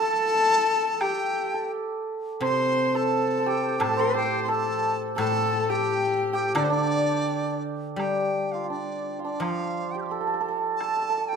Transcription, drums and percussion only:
0, 0, Header, 1, 2, 480
1, 0, Start_track
1, 0, Tempo, 700117
1, 699, Time_signature, 2, 2, 24, 8
1, 2146, Tempo, 688073
1, 4546, Tempo, 710059
1, 6466, Tempo, 692042
1, 7819, End_track
2, 0, Start_track
2, 0, Title_t, "Drums"
2, 691, Note_on_c, 9, 76, 57
2, 760, Note_off_c, 9, 76, 0
2, 1659, Note_on_c, 9, 76, 67
2, 1727, Note_off_c, 9, 76, 0
2, 2621, Note_on_c, 9, 76, 70
2, 2691, Note_off_c, 9, 76, 0
2, 3576, Note_on_c, 9, 76, 61
2, 3646, Note_off_c, 9, 76, 0
2, 4536, Note_on_c, 9, 76, 77
2, 4604, Note_off_c, 9, 76, 0
2, 5509, Note_on_c, 9, 76, 56
2, 5577, Note_off_c, 9, 76, 0
2, 6472, Note_on_c, 9, 76, 59
2, 6541, Note_off_c, 9, 76, 0
2, 7434, Note_on_c, 9, 76, 51
2, 7503, Note_off_c, 9, 76, 0
2, 7819, End_track
0, 0, End_of_file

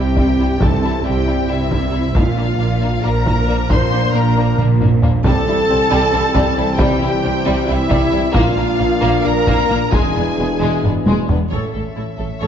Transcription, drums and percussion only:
0, 0, Header, 1, 2, 480
1, 0, Start_track
1, 0, Tempo, 441826
1, 672, Time_signature, 7, 3, 24, 8
1, 8594, Tempo, 450789
1, 13450, End_track
2, 0, Start_track
2, 0, Title_t, "Taiko and cinematic ensemble drums"
2, 181, Note_on_c, 9, 41, 65
2, 290, Note_off_c, 9, 41, 0
2, 659, Note_on_c, 9, 41, 82
2, 767, Note_off_c, 9, 41, 0
2, 1859, Note_on_c, 9, 41, 71
2, 1968, Note_off_c, 9, 41, 0
2, 2336, Note_on_c, 9, 41, 84
2, 2445, Note_off_c, 9, 41, 0
2, 3546, Note_on_c, 9, 41, 74
2, 3655, Note_off_c, 9, 41, 0
2, 4023, Note_on_c, 9, 41, 79
2, 4132, Note_off_c, 9, 41, 0
2, 4976, Note_on_c, 9, 47, 70
2, 5085, Note_off_c, 9, 47, 0
2, 5222, Note_on_c, 9, 45, 78
2, 5331, Note_off_c, 9, 45, 0
2, 5457, Note_on_c, 9, 43, 81
2, 5565, Note_off_c, 9, 43, 0
2, 5697, Note_on_c, 9, 41, 84
2, 5806, Note_off_c, 9, 41, 0
2, 6896, Note_on_c, 9, 41, 78
2, 7004, Note_off_c, 9, 41, 0
2, 7378, Note_on_c, 9, 41, 90
2, 7486, Note_off_c, 9, 41, 0
2, 8590, Note_on_c, 9, 41, 77
2, 8696, Note_off_c, 9, 41, 0
2, 9056, Note_on_c, 9, 41, 94
2, 9162, Note_off_c, 9, 41, 0
2, 10257, Note_on_c, 9, 41, 75
2, 10363, Note_off_c, 9, 41, 0
2, 10738, Note_on_c, 9, 41, 89
2, 10845, Note_off_c, 9, 41, 0
2, 11709, Note_on_c, 9, 45, 67
2, 11815, Note_off_c, 9, 45, 0
2, 11949, Note_on_c, 9, 48, 79
2, 12055, Note_off_c, 9, 48, 0
2, 12191, Note_on_c, 9, 43, 80
2, 12298, Note_off_c, 9, 43, 0
2, 12432, Note_on_c, 9, 41, 43
2, 12538, Note_off_c, 9, 41, 0
2, 13147, Note_on_c, 9, 41, 28
2, 13253, Note_off_c, 9, 41, 0
2, 13450, End_track
0, 0, End_of_file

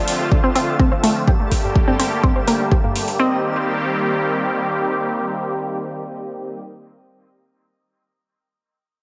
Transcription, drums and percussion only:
0, 0, Header, 1, 2, 480
1, 0, Start_track
1, 0, Tempo, 480000
1, 1275, Time_signature, 4, 2, 24, 8
1, 9024, End_track
2, 0, Start_track
2, 0, Title_t, "Drums"
2, 76, Note_on_c, 9, 46, 97
2, 176, Note_off_c, 9, 46, 0
2, 315, Note_on_c, 9, 36, 104
2, 415, Note_off_c, 9, 36, 0
2, 556, Note_on_c, 9, 46, 94
2, 656, Note_off_c, 9, 46, 0
2, 795, Note_on_c, 9, 36, 113
2, 895, Note_off_c, 9, 36, 0
2, 1036, Note_on_c, 9, 46, 95
2, 1136, Note_off_c, 9, 46, 0
2, 1275, Note_on_c, 9, 36, 112
2, 1375, Note_off_c, 9, 36, 0
2, 1515, Note_on_c, 9, 36, 54
2, 1515, Note_on_c, 9, 46, 99
2, 1615, Note_off_c, 9, 36, 0
2, 1615, Note_off_c, 9, 46, 0
2, 1755, Note_on_c, 9, 36, 109
2, 1855, Note_off_c, 9, 36, 0
2, 1996, Note_on_c, 9, 46, 98
2, 2096, Note_off_c, 9, 46, 0
2, 2235, Note_on_c, 9, 36, 107
2, 2335, Note_off_c, 9, 36, 0
2, 2476, Note_on_c, 9, 46, 100
2, 2576, Note_off_c, 9, 46, 0
2, 2715, Note_on_c, 9, 36, 109
2, 2815, Note_off_c, 9, 36, 0
2, 2955, Note_on_c, 9, 46, 93
2, 3055, Note_off_c, 9, 46, 0
2, 3077, Note_on_c, 9, 46, 56
2, 3177, Note_off_c, 9, 46, 0
2, 9024, End_track
0, 0, End_of_file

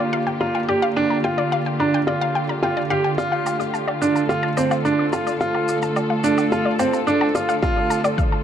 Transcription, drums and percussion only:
0, 0, Header, 1, 2, 480
1, 0, Start_track
1, 0, Key_signature, -1, "minor"
1, 0, Tempo, 555556
1, 833, Time_signature, 4, 2, 24, 8
1, 7288, End_track
2, 0, Start_track
2, 0, Title_t, "Drums"
2, 2754, Note_on_c, 9, 82, 28
2, 2840, Note_off_c, 9, 82, 0
2, 2993, Note_on_c, 9, 77, 59
2, 2993, Note_on_c, 9, 82, 65
2, 3080, Note_off_c, 9, 77, 0
2, 3080, Note_off_c, 9, 82, 0
2, 3112, Note_on_c, 9, 82, 35
2, 3199, Note_off_c, 9, 82, 0
2, 3234, Note_on_c, 9, 82, 26
2, 3320, Note_off_c, 9, 82, 0
2, 3354, Note_on_c, 9, 77, 61
2, 3441, Note_off_c, 9, 77, 0
2, 3474, Note_on_c, 9, 82, 68
2, 3561, Note_off_c, 9, 82, 0
2, 3593, Note_on_c, 9, 82, 39
2, 3680, Note_off_c, 9, 82, 0
2, 3714, Note_on_c, 9, 77, 56
2, 3714, Note_on_c, 9, 82, 27
2, 3800, Note_off_c, 9, 77, 0
2, 3800, Note_off_c, 9, 82, 0
2, 3952, Note_on_c, 9, 82, 61
2, 4038, Note_off_c, 9, 82, 0
2, 4072, Note_on_c, 9, 77, 62
2, 4072, Note_on_c, 9, 82, 35
2, 4158, Note_off_c, 9, 77, 0
2, 4158, Note_off_c, 9, 82, 0
2, 4192, Note_on_c, 9, 82, 28
2, 4279, Note_off_c, 9, 82, 0
2, 4432, Note_on_c, 9, 77, 64
2, 4432, Note_on_c, 9, 82, 65
2, 4519, Note_off_c, 9, 77, 0
2, 4519, Note_off_c, 9, 82, 0
2, 4553, Note_on_c, 9, 82, 38
2, 4639, Note_off_c, 9, 82, 0
2, 4671, Note_on_c, 9, 82, 29
2, 4758, Note_off_c, 9, 82, 0
2, 4791, Note_on_c, 9, 77, 59
2, 4877, Note_off_c, 9, 77, 0
2, 4910, Note_on_c, 9, 82, 68
2, 4996, Note_off_c, 9, 82, 0
2, 5030, Note_on_c, 9, 82, 40
2, 5117, Note_off_c, 9, 82, 0
2, 5151, Note_on_c, 9, 77, 54
2, 5151, Note_on_c, 9, 82, 28
2, 5238, Note_off_c, 9, 77, 0
2, 5238, Note_off_c, 9, 82, 0
2, 5391, Note_on_c, 9, 82, 67
2, 5478, Note_off_c, 9, 82, 0
2, 5511, Note_on_c, 9, 77, 62
2, 5511, Note_on_c, 9, 82, 40
2, 5598, Note_off_c, 9, 77, 0
2, 5598, Note_off_c, 9, 82, 0
2, 5632, Note_on_c, 9, 82, 30
2, 5719, Note_off_c, 9, 82, 0
2, 5869, Note_on_c, 9, 77, 62
2, 5869, Note_on_c, 9, 82, 70
2, 5956, Note_off_c, 9, 77, 0
2, 5956, Note_off_c, 9, 82, 0
2, 5991, Note_on_c, 9, 82, 36
2, 6077, Note_off_c, 9, 82, 0
2, 6113, Note_on_c, 9, 82, 31
2, 6199, Note_off_c, 9, 82, 0
2, 6231, Note_on_c, 9, 77, 60
2, 6317, Note_off_c, 9, 77, 0
2, 6352, Note_on_c, 9, 82, 67
2, 6439, Note_off_c, 9, 82, 0
2, 6473, Note_on_c, 9, 82, 40
2, 6559, Note_off_c, 9, 82, 0
2, 6589, Note_on_c, 9, 36, 108
2, 6591, Note_on_c, 9, 77, 60
2, 6591, Note_on_c, 9, 82, 31
2, 6676, Note_off_c, 9, 36, 0
2, 6678, Note_off_c, 9, 77, 0
2, 6678, Note_off_c, 9, 82, 0
2, 6831, Note_on_c, 9, 82, 78
2, 6918, Note_off_c, 9, 82, 0
2, 6952, Note_on_c, 9, 77, 62
2, 6952, Note_on_c, 9, 82, 42
2, 7038, Note_off_c, 9, 77, 0
2, 7038, Note_off_c, 9, 82, 0
2, 7070, Note_on_c, 9, 36, 107
2, 7072, Note_on_c, 9, 82, 29
2, 7156, Note_off_c, 9, 36, 0
2, 7158, Note_off_c, 9, 82, 0
2, 7288, End_track
0, 0, End_of_file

